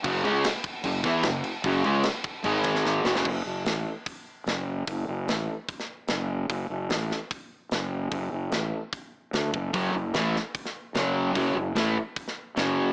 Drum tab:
CC |x-x-x-x-x-x-x-x-|x-x-x-x-x-x-----|x---------------|----------------|
HH |----------------|----------------|----o---o---o---|o---o---o---o---|
SD |----o-----o-o---|----o-----ooo-oo|----o-------o---|----o----o--o---|
BD |o-----o---o-----|o-----o---o-----|o-------o-------|o-------o-------|

CC |----------------|----------------|----------------|----------------|
HH |o---o---o---o---|o---o---o---o---|o---o---o---o---|o---o---o---o---|
SD |----o-o-----o---|----o-------o---|----o-o--o--o---|----o----o--o---|
BD |o-------o-------|o-------o-----o-|o-------o-------|o-------o-------|